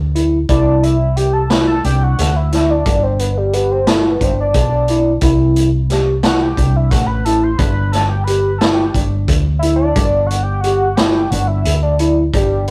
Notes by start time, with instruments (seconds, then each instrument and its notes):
Already playing: fretless electric bass D2
0.15 tine electric piano E4, closed hi-hat
0.49 fretless electric bass C2, tine electric piano E4, analog synth lead D5 A5, kick, closed hi-hat
0.83 analog synth lead E5 B5, closed hi-hat
1.16 tine electric piano G4, analog synth lead G5 D6, closed hi-hat
1.33 analog synth lead A5 E6
1.50 tine electric piano E4, analog synth lead B5 F#6, snare, closed hi-hat
1.67 analog synth lead A5 E6
1.84 fretless electric bass C2, tine electric piano D4, analog synth lead G5 D6, closed hi-hat
2.03 analog synth lead F#5 C#6
2.18 fretless electric bass D2, snare, closed hi-hat
2.36 analog synth lead E5 B5
2.52 tine electric piano E4, snare, closed hi-hat
2.70 analog synth lead D5 A5
2.86 fretless electric bass G1, tine electric piano D4, kick, closed hi-hat
3.03 analog synth lead C5 G5
3.19 analog synth lead B4 F#5, closed hi-hat
3.37 analog synth lead G4 D5
3.53 tine electric piano G4, analog synth lead B4 F#5, closed hi-hat
3.71 analog synth lead C5 G5
3.87 tine electric piano E4, analog synth lead A4 E5, snare, closed hi-hat
4.06 analog synth lead B4 F#5
4.21 fretless electric bass G1, tine electric piano D4, analog synth lead C5 G5, kick, closed hi-hat
4.40 analog synth lead D5 A5
4.54 fretless electric bass B1, kick, closed hi-hat
4.88 tine electric piano E4, closed hi-hat
5.21 fretless electric bass C2, tine electric piano E4, kick, closed hi-hat
5.56 closed hi-hat
5.90 tine electric piano G4, snare, closed hi-hat
6.23 tine electric piano E4, analog synth lead F#5 C#6, snare, closed hi-hat
6.42 analog synth lead G5 D6
6.57 fretless electric bass C2, tine electric piano D4, kick, closed hi-hat
6.76 analog synth lead E5 B5
6.90 fretless electric bass A1, analog synth lead F#5 C#6, kick, snare, closed hi-hat
7.06 analog synth lead B5 F#6
7.25 tine electric piano E4, analog synth lead A5 E6, closed hi-hat
7.43 analog synth lead C6 G6
7.58 fretless electric bass G1, tine electric piano D4, analog synth lead B5 F#6, kick, closed hi-hat
7.92 analog synth lead A5 E6, snare, closed hi-hat
8.09 analog synth lead G5 D6
8.24 tine electric piano G4, analog synth lead B5 F#6, closed hi-hat
8.58 tine electric piano E4, analog synth lead A5 E6, snare, closed hi-hat
8.73 analog synth lead G5 D6
8.94 fretless electric bass G1, tine electric piano D4, kick, closed hi-hat
9.28 fretless electric bass D2, kick, closed hi-hat
9.59 tine electric piano E4, analog synth lead E5 B5, closed hi-hat
9.76 analog synth lead D5 A5
9.96 fretless electric bass G1, tine electric piano D4, kick, closed hi-hat
10.26 analog synth lead F#5 C#6
10.30 closed hi-hat
10.43 analog synth lead G5 D6
10.61 tine electric piano G4, analog synth lead F#5 C#6, closed hi-hat
10.95 tine electric piano E4, analog synth lead G5 D6, snare, closed hi-hat
11.30 fretless electric bass G1, tine electric piano D4, analog synth lead F#5 C#6, closed hi-hat
11.47 analog synth lead E5 B5
11.65 fretless electric bass D2, closed hi-hat
11.82 analog synth lead D5 A5
11.99 tine electric piano E4, closed hi-hat
12.33 fretless electric bass G1, tine electric piano D4, analog synth lead G4 D5, kick, closed hi-hat